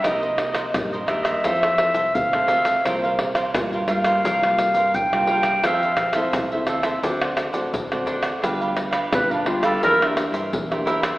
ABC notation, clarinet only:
X:1
M:4/4
L:1/16
Q:1/4=86
K:Cmix
V:1 name="Clarinet"
_e4 z2 =e6 f4 | c4 z2 f6 g4 | f4 z12 | z4 =B D F A _B2 z6 |]